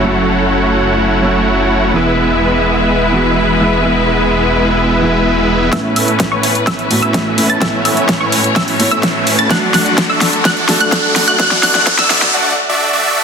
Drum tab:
HH |----------------|----------------|----------------|x-oxx-oxxxoxx-ox|
SD |----------------|----------------|----------------|o---o---o---o---|
BD |----------------|----------------|----------------|o---o---o---o---|

HH |x-oxx-oxxooxx-ox|x-oxx-oxxxoxx-o-|x-oxx-ox--------|
SD |o---o---o---o---|o-o-o-o-o-o-o-o-|oooooooo--------|
BD |o---o---o---o---|o---o---o---o---|o---o-----------|